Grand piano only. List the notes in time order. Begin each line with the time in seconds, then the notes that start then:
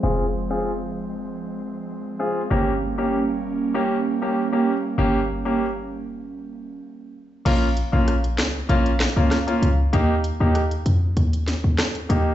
0.03 C4 F4 G#4
0.50 C4 F4 G#4
2.19 C4 F4 G#4
2.50 A#3 C#4 G4
2.98 A#3 C#4 G4
3.74 A#3 C#4 G4
4.22 A#3 C#4 G4
4.52 A#3 C#4 G4
4.98 A#3 C#4 G4
5.45 A#3 C#4 G4
7.45 A#3 C#4 F4
7.92 A#3 C#4 F4
8.69 A#3 C#4 F4
9.16 A#3 C#4 F4
9.47 A#3 C#4 F4
9.93 A#3 D#4 G4
10.40 A#3 D#4 G4
12.09 A#3 D#4 G4